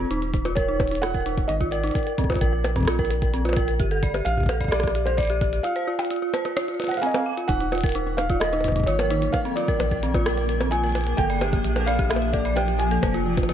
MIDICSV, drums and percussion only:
0, 0, Header, 1, 3, 480
1, 0, Start_track
1, 0, Tempo, 461538
1, 110, Time_signature, 4, 2, 24, 8
1, 14076, End_track
2, 0, Start_track
2, 0, Title_t, "Percussion blips"
2, 470, Note_on_c, 9, 60, 51
2, 574, Note_off_c, 9, 60, 0
2, 830, Note_on_c, 9, 60, 73
2, 934, Note_off_c, 9, 60, 0
2, 2389, Note_on_c, 9, 60, 50
2, 2414, Note_off_c, 9, 60, 0
2, 2414, Note_on_c, 9, 60, 41
2, 2437, Note_off_c, 9, 60, 0
2, 2437, Note_on_c, 9, 60, 34
2, 2486, Note_off_c, 9, 60, 0
2, 2486, Note_on_c, 9, 60, 22
2, 2590, Note_off_c, 9, 60, 0
2, 2750, Note_on_c, 9, 60, 76
2, 2854, Note_off_c, 9, 60, 0
2, 2869, Note_on_c, 9, 60, 36
2, 2973, Note_off_c, 9, 60, 0
2, 3590, Note_on_c, 9, 60, 36
2, 3629, Note_off_c, 9, 60, 0
2, 3629, Note_on_c, 9, 60, 50
2, 3670, Note_off_c, 9, 60, 0
2, 3670, Note_on_c, 9, 60, 64
2, 3774, Note_off_c, 9, 60, 0
2, 4309, Note_on_c, 9, 60, 54
2, 4413, Note_off_c, 9, 60, 0
2, 4670, Note_on_c, 9, 60, 79
2, 4774, Note_off_c, 9, 60, 0
2, 6229, Note_on_c, 9, 60, 55
2, 6333, Note_off_c, 9, 60, 0
2, 6590, Note_on_c, 9, 60, 80
2, 6694, Note_off_c, 9, 60, 0
2, 6709, Note_on_c, 9, 60, 38
2, 6813, Note_off_c, 9, 60, 0
2, 7070, Note_on_c, 9, 60, 37
2, 7111, Note_off_c, 9, 60, 0
2, 7111, Note_on_c, 9, 60, 31
2, 7152, Note_off_c, 9, 60, 0
2, 7152, Note_on_c, 9, 60, 25
2, 7191, Note_off_c, 9, 60, 0
2, 7191, Note_on_c, 9, 60, 20
2, 7232, Note_off_c, 9, 60, 0
2, 7232, Note_on_c, 9, 60, 16
2, 7270, Note_off_c, 9, 60, 0
2, 7270, Note_on_c, 9, 60, 13
2, 7374, Note_off_c, 9, 60, 0
2, 7430, Note_on_c, 9, 60, 85
2, 7534, Note_off_c, 9, 60, 0
2, 8030, Note_on_c, 9, 60, 55
2, 8134, Note_off_c, 9, 60, 0
2, 8509, Note_on_c, 9, 60, 82
2, 8613, Note_off_c, 9, 60, 0
2, 8869, Note_on_c, 9, 60, 23
2, 8949, Note_off_c, 9, 60, 0
2, 8949, Note_on_c, 9, 60, 33
2, 9029, Note_off_c, 9, 60, 0
2, 9029, Note_on_c, 9, 60, 43
2, 9133, Note_off_c, 9, 60, 0
2, 9350, Note_on_c, 9, 60, 85
2, 9454, Note_off_c, 9, 60, 0
2, 9711, Note_on_c, 9, 60, 53
2, 9815, Note_off_c, 9, 60, 0
2, 10191, Note_on_c, 9, 60, 81
2, 10295, Note_off_c, 9, 60, 0
2, 10551, Note_on_c, 9, 60, 53
2, 10655, Note_off_c, 9, 60, 0
2, 11030, Note_on_c, 9, 60, 81
2, 11134, Note_off_c, 9, 60, 0
2, 11390, Note_on_c, 9, 60, 53
2, 11494, Note_off_c, 9, 60, 0
2, 11870, Note_on_c, 9, 60, 78
2, 11974, Note_off_c, 9, 60, 0
2, 12230, Note_on_c, 9, 60, 52
2, 12334, Note_off_c, 9, 60, 0
2, 12649, Note_on_c, 9, 60, 77
2, 12753, Note_off_c, 9, 60, 0
2, 13070, Note_on_c, 9, 60, 52
2, 13174, Note_off_c, 9, 60, 0
2, 13550, Note_on_c, 9, 60, 74
2, 13654, Note_off_c, 9, 60, 0
2, 13909, Note_on_c, 9, 60, 49
2, 13970, Note_off_c, 9, 60, 0
2, 13970, Note_on_c, 9, 60, 41
2, 14030, Note_off_c, 9, 60, 0
2, 14030, Note_on_c, 9, 60, 33
2, 14076, Note_off_c, 9, 60, 0
2, 14076, End_track
3, 0, Start_track
3, 0, Title_t, "Drums"
3, 112, Note_on_c, 9, 42, 71
3, 216, Note_off_c, 9, 42, 0
3, 231, Note_on_c, 9, 42, 35
3, 335, Note_off_c, 9, 42, 0
3, 350, Note_on_c, 9, 36, 103
3, 350, Note_on_c, 9, 42, 73
3, 454, Note_off_c, 9, 36, 0
3, 454, Note_off_c, 9, 42, 0
3, 470, Note_on_c, 9, 42, 50
3, 574, Note_off_c, 9, 42, 0
3, 589, Note_on_c, 9, 42, 73
3, 590, Note_on_c, 9, 36, 117
3, 693, Note_off_c, 9, 42, 0
3, 694, Note_off_c, 9, 36, 0
3, 830, Note_on_c, 9, 36, 104
3, 830, Note_on_c, 9, 42, 34
3, 910, Note_off_c, 9, 42, 0
3, 910, Note_on_c, 9, 42, 44
3, 934, Note_off_c, 9, 36, 0
3, 951, Note_off_c, 9, 42, 0
3, 951, Note_on_c, 9, 42, 49
3, 991, Note_off_c, 9, 42, 0
3, 991, Note_on_c, 9, 42, 59
3, 1072, Note_off_c, 9, 42, 0
3, 1072, Note_on_c, 9, 37, 114
3, 1072, Note_on_c, 9, 42, 74
3, 1176, Note_off_c, 9, 37, 0
3, 1176, Note_off_c, 9, 42, 0
3, 1190, Note_on_c, 9, 36, 106
3, 1191, Note_on_c, 9, 42, 33
3, 1294, Note_off_c, 9, 36, 0
3, 1295, Note_off_c, 9, 42, 0
3, 1311, Note_on_c, 9, 42, 77
3, 1415, Note_off_c, 9, 42, 0
3, 1430, Note_on_c, 9, 36, 116
3, 1431, Note_on_c, 9, 42, 48
3, 1534, Note_off_c, 9, 36, 0
3, 1535, Note_off_c, 9, 42, 0
3, 1550, Note_on_c, 9, 42, 73
3, 1654, Note_off_c, 9, 42, 0
3, 1670, Note_on_c, 9, 36, 106
3, 1672, Note_on_c, 9, 42, 35
3, 1774, Note_off_c, 9, 36, 0
3, 1776, Note_off_c, 9, 42, 0
3, 1790, Note_on_c, 9, 42, 76
3, 1894, Note_off_c, 9, 42, 0
3, 1909, Note_on_c, 9, 42, 49
3, 1950, Note_off_c, 9, 42, 0
3, 1950, Note_on_c, 9, 42, 39
3, 1989, Note_off_c, 9, 42, 0
3, 1989, Note_on_c, 9, 42, 32
3, 2029, Note_on_c, 9, 36, 100
3, 2031, Note_off_c, 9, 42, 0
3, 2031, Note_on_c, 9, 42, 72
3, 2111, Note_off_c, 9, 42, 0
3, 2111, Note_on_c, 9, 42, 17
3, 2133, Note_off_c, 9, 36, 0
3, 2151, Note_off_c, 9, 42, 0
3, 2151, Note_on_c, 9, 42, 36
3, 2255, Note_off_c, 9, 42, 0
3, 2269, Note_on_c, 9, 36, 106
3, 2269, Note_on_c, 9, 42, 73
3, 2330, Note_off_c, 9, 36, 0
3, 2330, Note_on_c, 9, 36, 85
3, 2373, Note_off_c, 9, 42, 0
3, 2390, Note_off_c, 9, 36, 0
3, 2390, Note_on_c, 9, 36, 72
3, 2450, Note_off_c, 9, 36, 0
3, 2450, Note_on_c, 9, 36, 60
3, 2450, Note_on_c, 9, 42, 49
3, 2509, Note_off_c, 9, 42, 0
3, 2509, Note_on_c, 9, 42, 75
3, 2510, Note_off_c, 9, 36, 0
3, 2510, Note_on_c, 9, 36, 100
3, 2613, Note_off_c, 9, 42, 0
3, 2614, Note_off_c, 9, 36, 0
3, 2750, Note_on_c, 9, 42, 72
3, 2854, Note_off_c, 9, 42, 0
3, 2869, Note_on_c, 9, 36, 44
3, 2869, Note_on_c, 9, 42, 48
3, 2893, Note_off_c, 9, 36, 0
3, 2893, Note_on_c, 9, 36, 55
3, 2917, Note_off_c, 9, 36, 0
3, 2917, Note_on_c, 9, 36, 65
3, 2941, Note_off_c, 9, 36, 0
3, 2941, Note_on_c, 9, 36, 72
3, 2965, Note_off_c, 9, 36, 0
3, 2965, Note_on_c, 9, 36, 82
3, 2973, Note_off_c, 9, 42, 0
3, 2990, Note_on_c, 9, 37, 113
3, 2990, Note_on_c, 9, 42, 76
3, 3069, Note_off_c, 9, 36, 0
3, 3094, Note_off_c, 9, 37, 0
3, 3094, Note_off_c, 9, 42, 0
3, 3109, Note_on_c, 9, 36, 115
3, 3171, Note_on_c, 9, 42, 35
3, 3213, Note_off_c, 9, 36, 0
3, 3230, Note_off_c, 9, 42, 0
3, 3230, Note_on_c, 9, 42, 76
3, 3334, Note_off_c, 9, 42, 0
3, 3349, Note_on_c, 9, 36, 102
3, 3350, Note_on_c, 9, 42, 50
3, 3453, Note_off_c, 9, 36, 0
3, 3454, Note_off_c, 9, 42, 0
3, 3470, Note_on_c, 9, 42, 74
3, 3574, Note_off_c, 9, 42, 0
3, 3590, Note_on_c, 9, 42, 35
3, 3694, Note_off_c, 9, 42, 0
3, 3708, Note_on_c, 9, 42, 75
3, 3709, Note_on_c, 9, 36, 101
3, 3812, Note_off_c, 9, 42, 0
3, 3813, Note_off_c, 9, 36, 0
3, 3828, Note_on_c, 9, 42, 50
3, 3932, Note_off_c, 9, 42, 0
3, 3948, Note_on_c, 9, 42, 75
3, 3949, Note_on_c, 9, 36, 115
3, 4052, Note_off_c, 9, 42, 0
3, 4053, Note_off_c, 9, 36, 0
3, 4068, Note_on_c, 9, 42, 36
3, 4172, Note_off_c, 9, 42, 0
3, 4189, Note_on_c, 9, 36, 96
3, 4189, Note_on_c, 9, 42, 77
3, 4293, Note_off_c, 9, 36, 0
3, 4293, Note_off_c, 9, 42, 0
3, 4309, Note_on_c, 9, 42, 53
3, 4413, Note_off_c, 9, 42, 0
3, 4430, Note_on_c, 9, 42, 77
3, 4534, Note_off_c, 9, 42, 0
3, 4549, Note_on_c, 9, 36, 45
3, 4579, Note_off_c, 9, 36, 0
3, 4579, Note_on_c, 9, 36, 57
3, 4609, Note_off_c, 9, 36, 0
3, 4609, Note_on_c, 9, 36, 69
3, 4640, Note_off_c, 9, 36, 0
3, 4640, Note_on_c, 9, 36, 83
3, 4670, Note_on_c, 9, 42, 76
3, 4744, Note_off_c, 9, 36, 0
3, 4774, Note_off_c, 9, 42, 0
3, 4790, Note_on_c, 9, 36, 49
3, 4791, Note_on_c, 9, 42, 50
3, 4830, Note_off_c, 9, 36, 0
3, 4830, Note_on_c, 9, 36, 68
3, 4870, Note_off_c, 9, 36, 0
3, 4870, Note_on_c, 9, 36, 83
3, 4895, Note_off_c, 9, 42, 0
3, 4910, Note_on_c, 9, 37, 103
3, 4910, Note_on_c, 9, 42, 77
3, 4974, Note_off_c, 9, 36, 0
3, 4990, Note_off_c, 9, 37, 0
3, 4990, Note_on_c, 9, 37, 84
3, 5014, Note_off_c, 9, 42, 0
3, 5029, Note_on_c, 9, 42, 34
3, 5030, Note_on_c, 9, 36, 102
3, 5069, Note_off_c, 9, 37, 0
3, 5069, Note_on_c, 9, 37, 69
3, 5133, Note_off_c, 9, 42, 0
3, 5134, Note_off_c, 9, 36, 0
3, 5149, Note_on_c, 9, 42, 77
3, 5173, Note_off_c, 9, 37, 0
3, 5253, Note_off_c, 9, 42, 0
3, 5269, Note_on_c, 9, 42, 51
3, 5373, Note_off_c, 9, 42, 0
3, 5388, Note_on_c, 9, 42, 72
3, 5390, Note_on_c, 9, 36, 102
3, 5413, Note_off_c, 9, 42, 0
3, 5413, Note_on_c, 9, 42, 58
3, 5438, Note_off_c, 9, 42, 0
3, 5438, Note_on_c, 9, 42, 48
3, 5461, Note_off_c, 9, 42, 0
3, 5461, Note_on_c, 9, 42, 41
3, 5486, Note_off_c, 9, 42, 0
3, 5486, Note_on_c, 9, 42, 33
3, 5494, Note_off_c, 9, 36, 0
3, 5509, Note_off_c, 9, 42, 0
3, 5509, Note_on_c, 9, 42, 37
3, 5613, Note_off_c, 9, 42, 0
3, 5630, Note_on_c, 9, 36, 114
3, 5630, Note_on_c, 9, 42, 77
3, 5734, Note_off_c, 9, 36, 0
3, 5734, Note_off_c, 9, 42, 0
3, 5750, Note_on_c, 9, 42, 52
3, 5854, Note_off_c, 9, 42, 0
3, 5869, Note_on_c, 9, 42, 79
3, 5973, Note_off_c, 9, 42, 0
3, 5989, Note_on_c, 9, 42, 37
3, 6093, Note_off_c, 9, 42, 0
3, 6229, Note_on_c, 9, 42, 51
3, 6290, Note_off_c, 9, 42, 0
3, 6290, Note_on_c, 9, 42, 42
3, 6350, Note_off_c, 9, 42, 0
3, 6350, Note_on_c, 9, 42, 80
3, 6410, Note_off_c, 9, 42, 0
3, 6410, Note_on_c, 9, 42, 27
3, 6514, Note_off_c, 9, 42, 0
3, 6590, Note_on_c, 9, 42, 80
3, 6694, Note_off_c, 9, 42, 0
3, 6709, Note_on_c, 9, 42, 53
3, 6813, Note_off_c, 9, 42, 0
3, 6829, Note_on_c, 9, 37, 113
3, 6829, Note_on_c, 9, 42, 79
3, 6933, Note_off_c, 9, 37, 0
3, 6933, Note_off_c, 9, 42, 0
3, 6950, Note_on_c, 9, 42, 36
3, 7054, Note_off_c, 9, 42, 0
3, 7070, Note_on_c, 9, 42, 77
3, 7094, Note_off_c, 9, 42, 0
3, 7094, Note_on_c, 9, 42, 65
3, 7143, Note_off_c, 9, 42, 0
3, 7143, Note_on_c, 9, 42, 44
3, 7167, Note_off_c, 9, 42, 0
3, 7167, Note_on_c, 9, 42, 36
3, 7191, Note_off_c, 9, 42, 0
3, 7191, Note_on_c, 9, 42, 51
3, 7221, Note_off_c, 9, 42, 0
3, 7221, Note_on_c, 9, 42, 41
3, 7251, Note_off_c, 9, 42, 0
3, 7251, Note_on_c, 9, 42, 34
3, 7281, Note_off_c, 9, 42, 0
3, 7281, Note_on_c, 9, 42, 28
3, 7312, Note_off_c, 9, 42, 0
3, 7312, Note_on_c, 9, 42, 78
3, 7341, Note_off_c, 9, 42, 0
3, 7341, Note_on_c, 9, 42, 19
3, 7372, Note_off_c, 9, 42, 0
3, 7372, Note_on_c, 9, 42, 15
3, 7401, Note_off_c, 9, 42, 0
3, 7401, Note_on_c, 9, 42, 12
3, 7430, Note_off_c, 9, 42, 0
3, 7430, Note_on_c, 9, 42, 38
3, 7534, Note_off_c, 9, 42, 0
3, 7670, Note_on_c, 9, 42, 53
3, 7774, Note_off_c, 9, 42, 0
3, 7789, Note_on_c, 9, 36, 108
3, 7790, Note_on_c, 9, 42, 80
3, 7893, Note_off_c, 9, 36, 0
3, 7894, Note_off_c, 9, 42, 0
3, 7909, Note_on_c, 9, 42, 38
3, 8013, Note_off_c, 9, 42, 0
3, 8030, Note_on_c, 9, 42, 37
3, 8060, Note_off_c, 9, 42, 0
3, 8060, Note_on_c, 9, 42, 44
3, 8089, Note_off_c, 9, 42, 0
3, 8089, Note_on_c, 9, 42, 47
3, 8119, Note_off_c, 9, 42, 0
3, 8119, Note_on_c, 9, 42, 53
3, 8149, Note_off_c, 9, 42, 0
3, 8149, Note_on_c, 9, 36, 120
3, 8149, Note_on_c, 9, 42, 58
3, 8178, Note_off_c, 9, 42, 0
3, 8178, Note_on_c, 9, 42, 64
3, 8208, Note_off_c, 9, 42, 0
3, 8208, Note_on_c, 9, 42, 70
3, 8238, Note_off_c, 9, 42, 0
3, 8238, Note_on_c, 9, 42, 74
3, 8253, Note_off_c, 9, 36, 0
3, 8268, Note_off_c, 9, 42, 0
3, 8268, Note_on_c, 9, 42, 83
3, 8372, Note_off_c, 9, 42, 0
3, 8509, Note_on_c, 9, 42, 81
3, 8613, Note_off_c, 9, 42, 0
3, 8628, Note_on_c, 9, 42, 54
3, 8629, Note_on_c, 9, 36, 102
3, 8732, Note_off_c, 9, 42, 0
3, 8733, Note_off_c, 9, 36, 0
3, 8749, Note_on_c, 9, 37, 120
3, 8749, Note_on_c, 9, 42, 81
3, 8853, Note_off_c, 9, 37, 0
3, 8853, Note_off_c, 9, 42, 0
3, 8869, Note_on_c, 9, 42, 37
3, 8973, Note_off_c, 9, 42, 0
3, 8989, Note_on_c, 9, 36, 47
3, 8989, Note_on_c, 9, 42, 87
3, 9029, Note_off_c, 9, 36, 0
3, 9029, Note_on_c, 9, 36, 56
3, 9069, Note_off_c, 9, 36, 0
3, 9069, Note_on_c, 9, 36, 64
3, 9093, Note_off_c, 9, 42, 0
3, 9109, Note_off_c, 9, 36, 0
3, 9109, Note_on_c, 9, 36, 75
3, 9109, Note_on_c, 9, 42, 56
3, 9149, Note_off_c, 9, 36, 0
3, 9149, Note_on_c, 9, 36, 85
3, 9189, Note_off_c, 9, 36, 0
3, 9189, Note_on_c, 9, 36, 92
3, 9213, Note_off_c, 9, 42, 0
3, 9229, Note_on_c, 9, 42, 83
3, 9293, Note_off_c, 9, 36, 0
3, 9333, Note_off_c, 9, 42, 0
3, 9350, Note_on_c, 9, 42, 40
3, 9454, Note_off_c, 9, 42, 0
3, 9470, Note_on_c, 9, 42, 83
3, 9574, Note_off_c, 9, 42, 0
3, 9590, Note_on_c, 9, 42, 56
3, 9694, Note_off_c, 9, 42, 0
3, 9709, Note_on_c, 9, 36, 111
3, 9711, Note_on_c, 9, 42, 82
3, 9813, Note_off_c, 9, 36, 0
3, 9815, Note_off_c, 9, 42, 0
3, 9831, Note_on_c, 9, 42, 37
3, 9935, Note_off_c, 9, 42, 0
3, 9952, Note_on_c, 9, 42, 85
3, 10056, Note_off_c, 9, 42, 0
3, 10069, Note_on_c, 9, 36, 127
3, 10071, Note_on_c, 9, 42, 56
3, 10173, Note_off_c, 9, 36, 0
3, 10175, Note_off_c, 9, 42, 0
3, 10191, Note_on_c, 9, 42, 83
3, 10295, Note_off_c, 9, 42, 0
3, 10309, Note_on_c, 9, 36, 87
3, 10311, Note_on_c, 9, 42, 39
3, 10413, Note_off_c, 9, 36, 0
3, 10415, Note_off_c, 9, 42, 0
3, 10430, Note_on_c, 9, 42, 82
3, 10534, Note_off_c, 9, 42, 0
3, 10550, Note_on_c, 9, 36, 109
3, 10551, Note_on_c, 9, 42, 54
3, 10654, Note_off_c, 9, 36, 0
3, 10655, Note_off_c, 9, 42, 0
3, 10671, Note_on_c, 9, 37, 122
3, 10671, Note_on_c, 9, 42, 80
3, 10775, Note_off_c, 9, 37, 0
3, 10775, Note_off_c, 9, 42, 0
3, 10791, Note_on_c, 9, 42, 37
3, 10895, Note_off_c, 9, 42, 0
3, 10910, Note_on_c, 9, 42, 86
3, 11014, Note_off_c, 9, 42, 0
3, 11030, Note_on_c, 9, 42, 55
3, 11134, Note_off_c, 9, 42, 0
3, 11150, Note_on_c, 9, 42, 82
3, 11254, Note_off_c, 9, 42, 0
3, 11270, Note_on_c, 9, 42, 18
3, 11301, Note_off_c, 9, 42, 0
3, 11301, Note_on_c, 9, 42, 21
3, 11330, Note_off_c, 9, 42, 0
3, 11330, Note_on_c, 9, 42, 23
3, 11361, Note_off_c, 9, 42, 0
3, 11361, Note_on_c, 9, 42, 26
3, 11390, Note_off_c, 9, 42, 0
3, 11390, Note_on_c, 9, 42, 84
3, 11420, Note_off_c, 9, 42, 0
3, 11420, Note_on_c, 9, 42, 30
3, 11449, Note_off_c, 9, 42, 0
3, 11449, Note_on_c, 9, 42, 33
3, 11480, Note_off_c, 9, 42, 0
3, 11480, Note_on_c, 9, 42, 34
3, 11509, Note_off_c, 9, 42, 0
3, 11509, Note_on_c, 9, 42, 55
3, 11613, Note_off_c, 9, 42, 0
3, 11629, Note_on_c, 9, 36, 113
3, 11630, Note_on_c, 9, 42, 83
3, 11733, Note_off_c, 9, 36, 0
3, 11734, Note_off_c, 9, 42, 0
3, 11751, Note_on_c, 9, 42, 38
3, 11855, Note_off_c, 9, 42, 0
3, 11870, Note_on_c, 9, 42, 79
3, 11974, Note_off_c, 9, 42, 0
3, 11990, Note_on_c, 9, 36, 124
3, 11991, Note_on_c, 9, 42, 55
3, 12094, Note_off_c, 9, 36, 0
3, 12095, Note_off_c, 9, 42, 0
3, 12111, Note_on_c, 9, 42, 81
3, 12215, Note_off_c, 9, 42, 0
3, 12350, Note_on_c, 9, 42, 80
3, 12454, Note_off_c, 9, 42, 0
3, 12470, Note_on_c, 9, 36, 108
3, 12471, Note_on_c, 9, 42, 55
3, 12574, Note_off_c, 9, 36, 0
3, 12575, Note_off_c, 9, 42, 0
3, 12589, Note_on_c, 9, 37, 123
3, 12589, Note_on_c, 9, 42, 81
3, 12693, Note_off_c, 9, 37, 0
3, 12693, Note_off_c, 9, 42, 0
3, 12710, Note_on_c, 9, 42, 36
3, 12814, Note_off_c, 9, 42, 0
3, 12829, Note_on_c, 9, 42, 84
3, 12830, Note_on_c, 9, 36, 109
3, 12933, Note_off_c, 9, 42, 0
3, 12934, Note_off_c, 9, 36, 0
3, 12949, Note_on_c, 9, 42, 54
3, 13053, Note_off_c, 9, 42, 0
3, 13070, Note_on_c, 9, 42, 80
3, 13174, Note_off_c, 9, 42, 0
3, 13188, Note_on_c, 9, 42, 39
3, 13292, Note_off_c, 9, 42, 0
3, 13308, Note_on_c, 9, 42, 83
3, 13412, Note_off_c, 9, 42, 0
3, 13430, Note_on_c, 9, 42, 53
3, 13534, Note_off_c, 9, 42, 0
3, 13549, Note_on_c, 9, 36, 114
3, 13550, Note_on_c, 9, 42, 77
3, 13653, Note_off_c, 9, 36, 0
3, 13654, Note_off_c, 9, 42, 0
3, 13670, Note_on_c, 9, 42, 37
3, 13774, Note_off_c, 9, 42, 0
3, 13909, Note_on_c, 9, 36, 127
3, 13909, Note_on_c, 9, 42, 82
3, 13970, Note_off_c, 9, 42, 0
3, 13970, Note_on_c, 9, 42, 42
3, 14013, Note_off_c, 9, 36, 0
3, 14030, Note_off_c, 9, 42, 0
3, 14030, Note_on_c, 9, 42, 79
3, 14076, Note_off_c, 9, 42, 0
3, 14076, End_track
0, 0, End_of_file